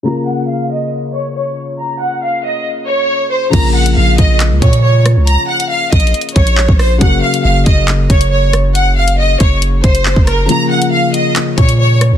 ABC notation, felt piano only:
X:1
M:4/4
L:1/8
Q:1/4=138
K:Bbm
V:1 name="Felt piano"
[D,B,FB]8- | [D,B,FB]8 | [D,F,B,FB]8- | [D,F,B,FB]8 |
[D,G,B,GB]8- | [D,G,B,GB]8 | [D,F,B,FB]8 |]